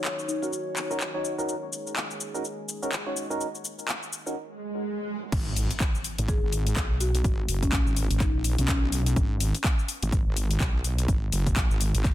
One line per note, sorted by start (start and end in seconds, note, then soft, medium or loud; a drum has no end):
0.00 4.32 D#4 medium
0.00 1.44 F#4 medium
0.00 4.32 A#4 medium
0.00 4.32 C#5 medium
0.05 clap loud
0.05 cabasa soft
0.19 cabasa soft
0.28 0.40 D#4 medium
0.28 cabasa medium
0.42 0.52 C#4 medium
0.42 0.52 D#4 medium
0.42 0.52 F#4 medium
0.42 0.76 F#4 medium
0.42 0.52 A#4 medium
0.42 cabasa soft
0.53 cabasa soft
0.77 clap medium
0.77 cabasa medium
0.90 1.00 C#4 medium
0.90 1.00 D#4 medium
0.90 1.00 F#4 medium
0.90 1.00 A#4 medium
0.90 cabasa soft
1.00 clap loud
1.00 cabasa soft
1.14 1.35 C#4 medium
1.14 1.35 D#4 medium
1.14 1.35 F#4 medium
1.14 1.35 C#5 medium
1.25 cabasa medium
1.38 1.55 C#4 medium
1.38 1.55 D#4 medium
1.38 1.55 F#4 medium
1.38 1.55 A#4 medium
1.38 cabasa soft
1.48 4.34 G#4 medium
1.48 cabasa soft
1.73 cabasa medium
1.87 cabasa soft
1.96 clap loud
1.96 cabasa soft
2.11 cabasa soft
2.21 cabasa medium
2.34 2.44 C#4 medium
2.34 2.44 D#4 medium
2.34 2.44 F#4 medium
2.34 2.44 A#4 medium
2.34 cabasa soft
2.45 cabasa soft
2.69 cabasa medium
2.83 2.92 C#4 medium
2.83 2.92 D#4 medium
2.83 2.92 F#4 medium
2.83 2.92 A#4 medium
2.83 cabasa soft
2.92 clap loud
2.92 cabasa soft
3.06 3.27 C#4 medium
3.06 3.27 D#4 medium
3.06 3.27 F#4 medium
3.06 3.27 C#5 medium
3.17 cabasa medium
3.30 3.47 C#4 loud
3.30 3.47 D#4 medium
3.30 3.47 F#4 medium
3.30 3.47 A#4 loud
3.30 cabasa soft
3.41 cabasa soft
3.55 cabasa soft
3.65 cabasa medium
3.79 cabasa soft
3.88 clap loud
3.88 cabasa soft
4.03 cabasa soft
4.13 cabasa medium
4.26 4.35 C#4 medium
4.26 4.36 D#4 medium
4.26 4.35 F#4 medium
4.26 4.36 A#4 medium
4.26 cabasa soft
4.36 swell medium
5.32 5.68 G#1 loud
5.32 kick loud
5.32 closed hi-hat medium
5.32 crash loud
5.32 impact medium
5.32 cabasa soft
5.56 open hi-hat loud
5.56 cabasa medium
5.71 closed hi-hat medium
5.71 cabasa soft
5.80 kick loud
5.80 clap loud
5.80 closed hi-hat medium
5.80 cabasa soft
5.95 cabasa soft
6.04 open hi-hat loud
6.04 cabasa medium
6.18 6.40 G#1 loud
6.18 closed hi-hat medium
6.18 cabasa soft
6.28 6.43 G#4 medium
6.28 kick loud
6.28 closed hi-hat medium
6.28 cabasa soft
6.43 6.75 G#1 loud
6.52 open hi-hat loud
6.52 cabasa medium
6.67 closed hi-hat medium
6.67 cabasa soft
6.76 7.23 B1 loud
6.76 kick loud
6.76 clap loud
6.76 closed hi-hat medium
6.76 cabasa soft
7.00 7.15 F#4 medium
7.00 open hi-hat loud
7.00 cabasa medium
7.15 closed hi-hat medium
7.15 cabasa soft
7.24 7.47 G#1 loud
7.24 kick loud
7.24 closed hi-hat medium
7.24 cabasa soft
7.48 7.71 F#1 medium
7.48 open hi-hat loud
7.48 cabasa medium
7.63 7.73 C#4 medium
7.63 kick medium
7.63 closed hi-hat medium
7.63 cabasa soft
7.72 7.84 A#1 medium
7.72 kick loud
7.72 clap loud
7.72 closed hi-hat medium
7.72 cabasa soft
7.86 8.08 G#1 loud
7.86 cabasa soft
7.96 open hi-hat loud
7.96 cabasa medium
8.11 8.32 G#1 loud
8.11 closed hi-hat medium
8.11 cabasa soft
8.20 8.35 D#4 medium
8.20 kick loud
8.20 clap soft
8.20 closed hi-hat medium
8.20 cabasa soft
8.34 8.56 A#1 loud
8.44 open hi-hat loud
8.44 cabasa medium
8.58 8.67 B1 loud
8.58 8.65 C#4 medium
8.58 closed hi-hat medium
8.58 cabasa soft
8.68 9.15 B1 loud
8.68 8.78 C#4 medium
8.68 kick loud
8.68 clap loud
8.68 closed hi-hat medium
8.68 cabasa soft
8.92 open hi-hat loud
8.92 cabasa medium
9.06 closed hi-hat medium
9.06 cabasa soft
9.16 9.52 G#1 medium
9.16 kick loud
9.16 closed hi-hat soft
9.16 cabasa soft
9.40 open hi-hat loud
9.40 cabasa medium
9.55 closed hi-hat medium
9.55 cabasa soft
9.64 kick loud
9.64 clap loud
9.64 closed hi-hat soft
9.64 cabasa soft
9.79 cabasa soft
9.88 open hi-hat loud
9.88 cabasa medium
10.03 10.24 G#1 loud
10.03 closed hi-hat medium
10.03 cabasa soft
10.12 kick loud
10.12 closed hi-hat medium
10.12 cabasa soft
10.27 10.59 G#1 loud
10.37 open hi-hat loud
10.37 cabasa medium
10.51 closed hi-hat medium
10.51 cabasa soft
10.60 11.07 B1 loud
10.60 kick loud
10.60 clap loud
10.60 closed hi-hat medium
10.60 cabasa soft
10.84 open hi-hat loud
10.84 cabasa medium
10.98 closed hi-hat medium
10.98 cabasa soft
11.08 11.31 G#1 loud
11.08 kick loud
11.08 closed hi-hat medium
11.08 cabasa soft
11.32 11.55 F#1 loud
11.32 open hi-hat loud
11.32 cabasa medium
11.47 kick medium
11.47 closed hi-hat medium
11.47 cabasa soft
11.56 11.68 A#1 medium
11.56 kick loud
11.56 clap loud
11.56 closed hi-hat soft
11.56 cabasa soft
11.70 11.92 G#1 loud
11.70 cabasa soft
11.81 open hi-hat loud
11.81 cabasa medium
11.94 12.14 G#1 loud
11.94 closed hi-hat medium
11.94 cabasa soft
12.04 kick loud
12.04 clap soft
12.04 closed hi-hat medium
12.04 cabasa soft